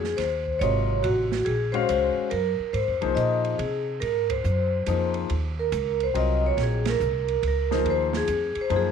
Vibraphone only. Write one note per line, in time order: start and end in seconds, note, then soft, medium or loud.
0.00 0.15 G#4 medium
0.17 0.57 C5 medium
0.59 1.04 C#5 medium
1.03 1.43 F#4 medium
1.45 1.74 G#4 medium
1.72 2.27 C5 medium
2.30 2.75 A#4 medium
2.73 3.17 C5 medium
3.15 3.55 D#5 medium
3.58 3.98 G#4 medium
4.00 4.30 A#4 medium
4.30 5.11 C5 medium
5.60 6.02 A#4 medium
6.03 6.16 C5 medium
6.18 6.42 D#5 medium
6.46 6.52 C#5 medium
6.63 6.86 G#4 medium
6.89 7.41 A#4 medium
7.48 7.89 A#4 medium
7.90 8.02 C5 medium
8.17 8.59 G#4 medium
8.61 8.72 C5 medium
8.76 8.88 G#4 medium